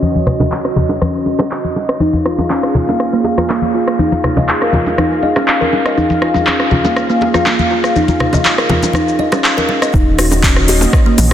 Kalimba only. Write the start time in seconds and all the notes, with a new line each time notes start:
2.01 D#4
2.25 F4
2.50 C#4
2.75 F4
2.88 A#3
3.13 A#3
3.38 F4
3.49 A#3
3.74 F4
3.99 D#4
4.12 F4
4.37 D#5
4.62 A#4
4.73 F4
4.98 D#4
5.23 D#5
5.36 C#4
5.61 A#4
5.86 D#5
5.97 D#4
6.22 F4
6.47 C#4
6.72 F4
6.85 A#3
7.10 A#3
7.35 F4
7.46 A#3
7.71 F4
7.96 D#4
8.09 F4
8.34 D#5
8.58 A#4
8.70 F4
8.95 D#4
9.19 D#5
9.32 C#4
9.57 A#4
9.82 D#5
9.94 D#4
10.19 F#4
10.44 C#4
10.68 F#4
10.82 A#3
11.06 A#3